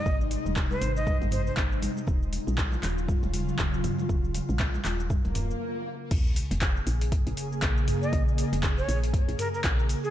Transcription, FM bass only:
X:1
M:4/4
L:1/16
Q:"Swing 16ths" 1/4=119
K:Bbm
V:1 name="FM bass" clef=bass
A,,,2 z E,,,2 z A,,,2 z A,,,2 z A,,,2 z2 | E,,,2 z B,,,2 z E,,,2 z E,,,2 z E,,,2 z2 | E,,,2 z B,,,2 z E,,,2 z E,,,2 z4 z | B,,,2 z F,,,2 z B,,,2 z B,,, z2 B,,,2 z2 |
B,,,2 z F,,,2 z B,,,2 z B,,, z2 B,,,2 z2 |]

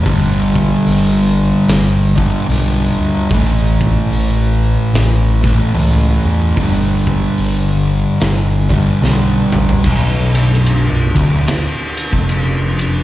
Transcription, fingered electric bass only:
X:1
M:4/4
L:1/16
Q:"Swing" 1/4=74
K:Bm
V:1 name="Fingered electric bass" clef=bass
G,,,4 G,,,4 G,,,4 B,,,2 D,,2 | A,,,4 A,,,4 A,,,4 C,,2 E,,2 | G,,,4 G,,,4 G,,,4 B,,,2 A,,,2 | B,,,,4- B,,,, B,,,, D,,,2 z3 ^E,,,4- E,,, |]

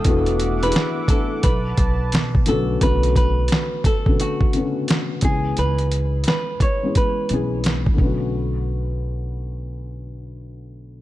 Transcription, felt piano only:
X:1
M:4/4
L:1/16
Q:"Swing 16ths" 1/4=87
K:Bdor
V:1 name="Felt piano"
[E,A,B,DF]3 [E,A,B,DG]3 [E,A,B,DE]2 z6 [D,A,B,CF]2 | [D,A,B,CF]6 z [D,A,B,CF]3 [C,D,A,B,CF]4 [E,G,B,CG]2- | [E,G,B,CG]4- [E,G,B,CG] z2 [E,G,B,CG]3 [E,G,B,CG]4 [D,A,B,CF]2- | [D,A,B,CF]16 |]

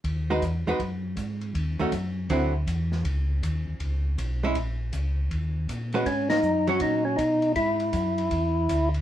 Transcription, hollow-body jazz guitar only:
X:1
M:4/4
L:1/8
Q:"Swing" 1/4=160
K:G#m
V:1 name="Hollow-body jazz guitar"
z [G,DFB] z [G,DFB] z4 | z [D,=A,CF] z2 [=D,F,=CE] z3 | z6 z [G,CE] | z6 z [G,CFB] |
z3 [F,C]3 z2 | z8 |]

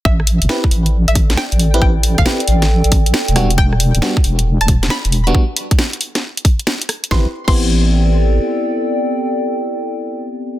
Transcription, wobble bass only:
X:1
M:4/4
L:1/16
Q:"Swing 16ths" 1/4=136
K:Am
V:1 name="Wobble bass" clef=bass
A,,,3 G,,, z2 A,,,3 A,,,3 z A,,,3 | A,,,3 G,,, z2 A,,,3 A,,,3 z E,,,3 | E,,,3 D,,, z2 E,,,3 E,,,3 z E,,,3 | z16 |
A,,, z2 A,,,8- A,,, z4 | z16 |]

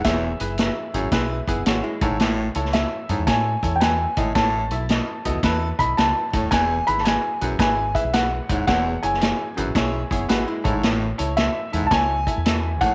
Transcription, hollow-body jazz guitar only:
X:1
M:4/4
L:1/16
Q:"Swing" 1/4=111
K:E
V:1 name="Hollow-body jazz guitar"
z8 z2 [B,G]2 F [G,E]2 z | z16 | z16 | z16 |
z8 z2 [B,G]2 F [G,E]2 z | z16 |]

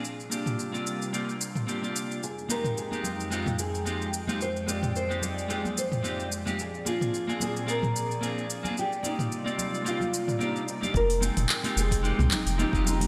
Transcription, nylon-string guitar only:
X:1
M:4/4
L:1/8
Q:"Swing 16ths" 1/4=110
K:Fdor
V:1 name="Nylon-string guitar"
z8 | A B A F F A2 z | c d c A A c2 z | A F2 A B3 z |
G E3 F2 E E | B A2 A2 E E E |]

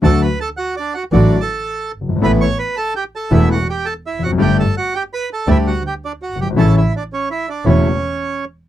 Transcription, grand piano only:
X:1
M:4/4
L:1/16
Q:1/4=110
K:D
V:1 name="Grand piano" clef=bass
[D,,D,F,A,F]2 z6 [A,,,A,,D,F,A,F]2 z4 z/2 F,,,/2 G,,,/2 ^G,,,/2 | [A,,,A,,E,A,B,A]2 z6 [E,,,E,,E,A,B,A]2 z4 z/2 E,,/2 =F,,/2 ^F,,/2 | [G,,,G,,D,G,A,G]2 z6 [D,,D,G,A,G]2 z4 z/2 F,,,/2 G,,,/2 ^G,,,/2 | [A,,,A,,C,E,A,E]2 z6 [E,,,E,,C,E,A,E]2 z6 |]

